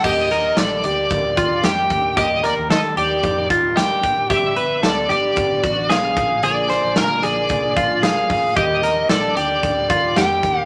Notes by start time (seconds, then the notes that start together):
0.03 D#2 D3 D#3 G3 A#3 D4 G4 D#5, kick, crash
0.30 A#3 D4 G4 A#4, snare, closed hi-hat
0.57 A#1 D#3 A#3 D4 G4 A4 D5, snare, closed hi-hat
0.84 D2 A#3 D4 G4 D5, closed hi-hat
1.10 D2 D#3 A#3 D4 G4, kick, closed hi-hat
1.36 D#2 A#3 D4 F4 G4, kick, closed hi-hat
1.62 F2 D#3 A#3 D4 G4 G5, snare, closed hi-hat
1.90 D#2 A#3 D4, kick, closed hi-hat
2.15 D#2 D#3 A#3 D4 D#4 G4 D#5, kick, closed hi-hat
2.41 A#3 D4 G4 A#4, snare, closed hi-hat
2.45 D5
2.57 D#2
2.68 D#3 A#3 D4 G4 A4, snare, closed hi-hat
2.72 D#5
2.94 D#2 A#3 D4 G4, closed hi-hat
2.98 D5
3.21 F2 D#3 A#3 D4 G4, kick, closed hi-hat
3.48 D#2 A#3 D4 F4 G4, kick, closed hi-hat
3.75 D#3 A#3 D4 G4 G5, snare, closed hi-hat
4.02 A#3 D4 G4, kick, closed hi-hat
4.28 G1 D3 G3 B3 D4 F#4 G4 E5, kick, closed hi-hat
4.55 B3 D4 F#4 B4, closed hi-hat
4.81 D2 G3 B3 D4 F#4 A4 D5, snare, closed hi-hat
5.08 G1 D4 F#4 G4 D5, closed hi-hat
5.35 G1 G3 B3 D4 F#4, kick, closed hi-hat
5.62 A1 B3 D4 F#4, kick, closed hi-hat
5.89 B1 G3 B3 D4 F#4 G#4 F5, snare, closed hi-hat
6.16 A#1 D3 F3 A#3 D4 G#4, kick, closed hi-hat
6.42 A#1 A#2 D3 F3 A#3 D4 G#4 D5, closed hi-hat
6.69 F3 A#3 D4 G#4 C5, snare, closed hi-hat
6.84 A#1
6.95 A#2 D3 F3 A#3 D4 G#4 A#4, snare, closed hi-hat
7.22 A#1 F3 A#3 D4 G#4 D5, closed hi-hat
7.48 C2 F3 A#3 D4 G#4, kick, closed hi-hat
7.75 A#1 F3 A#3 D4 F4 G#4, kick, closed hi-hat
8.02 A#2 D3 F3 A#3 D4 G#4 F5, snare, closed hi-hat
8.29 F3 A#3 D4 G#4, kick, open hi-hat
8.56 D#2 D3 D#3 G3 A#3 D4 G4 D#5, kick, closed hi-hat
8.83 A#3 D4 G4 A#4, snare, closed hi-hat
9.09 A#1 D#3 G3 A#3 D4 G4 A4 D5, snare, closed hi-hat
9.36 D2 A#3 D4 G4 D5, closed hi-hat
9.62 D2 G3 A#3 D4 G4, kick, closed hi-hat
9.89 D#2 A#3 D4 F4 G4, kick, closed hi-hat
10.16 F2 D#3 G3 A#3 D4 G4 G5, snare, closed hi-hat
10.42 D#2 A#3 D4 G4, kick, closed hi-hat
10.60 F5